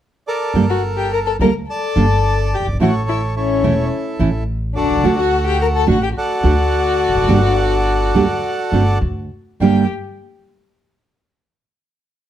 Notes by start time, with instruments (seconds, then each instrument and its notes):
0.27 bandoneon A4 A#4 D5
0.54 upright bass G1, nylon-string guitar D3 G3 A#3 D4 A4
0.70 violin F#4, bandoneon F#5
0.97 violin G4, bandoneon G5
1.13 violin A#4, bandoneon A#5
1.26 violin A4, bandoneon A5
1.39 upright bass D2, nylon-string guitar D3 G3 A#3 D4 A4, violin A#4, bandoneon A#5
1.70 violin A4, bandoneon D5 A5
1.96 upright bass G1, nylon-string guitar D3 G3 A#3 D4 A4
2.54 violin G4, bandoneon G5
2.60 upright bass F#1
2.67 upright bass G1
2.73 upright bass G#1
2.79 upright bass A1, nylon-string guitar E3 A3 C#4 E4, violin F#4, bandoneon A4 C#5 F#5
3.09 violin E4, bandoneon E5
3.36 violin C#4, bandoneon E4 A4 C#5
3.63 upright bass E1, nylon-string guitar E3 A3 C#4 E4
4.19 upright bass A1, nylon-string guitar E3 A3 C#4 E4
4.75 violin D4, bandoneon F#4 A4 D5
4.83 upright bass B1
4.90 upright bass C2
4.96 upright bass C#2
5.04 upright bass D2, nylon-string guitar D3 A3 D4 F#4
5.18 violin F#4, bandoneon F#5
5.46 violin G4, bandoneon G5
5.61 violin A#4, bandoneon A#5
5.75 violin A4, bandoneon A5
5.87 upright bass A1, nylon-string guitar D3 A3 D4 F#4, violin F#4, bandoneon F#5
6.03 violin G4, bandoneon G5
6.16 violin F#4, bandoneon A4 D5 F#5
6.43 upright bass D2, nylon-string guitar D3 A3 D4 F#4
7.08 upright bass E1
7.14 upright bass F1
7.22 upright bass F#1
7.28 upright bass G1, nylon-string guitar D3 G3 A#3 D4 G4
8.14 upright bass D2, nylon-string guitar D3 G3 A#3 D4 G4
8.72 upright bass G1, nylon-string guitar D3 A3 C4 F#4
9.01 upright bass D2
9.60 upright bass G1, nylon-string guitar G2 D3 G3 A#3 D4 G4, violin G4, bandoneon G5